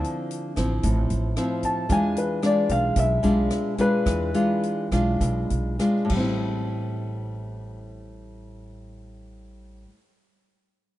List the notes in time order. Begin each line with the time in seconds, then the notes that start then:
Already playing: D3 F3 C4 E4
0.04 closed hi-hat
0.31 closed hi-hat
0.56 A1 F3 C4 E4, kick, cross-stick, closed hi-hat
0.83 A1 A2, kick, closed hi-hat
1.10 A1, closed hi-hat
1.37 F3 C4 E4, cross-stick, closed hi-hat
1.63 A5, kick, closed hi-hat
1.89 E2 E3 G#3 D4 F4 G#5, kick, closed hi-hat
2.16 B4, closed hi-hat
2.42 G#3 D4 F4 D5, cross-stick, closed hi-hat
2.69 B1 F5, kick, closed hi-hat
2.96 B1 B2 E5, kick, closed hi-hat
3.23 B1 G#3 D4 F4, closed hi-hat
3.51 cross-stick, closed hi-hat
3.78 G#3 D4 F4 B4, kick, closed hi-hat
4.06 E2 E3, kick, cross-stick, closed hi-hat
4.34 G#3 D4 F4, closed hi-hat
4.63 closed hi-hat
4.91 B1 G#3 D4 F4, kick, cross-stick, closed hi-hat
5.21 B1 B2, kick, closed hi-hat
5.50 B1, closed hi-hat
5.79 G#3 D4 F4, cross-stick, closed hi-hat
6.05 A2
6.10 A1 G3, kick, crash
6.16 C4
6.20 E4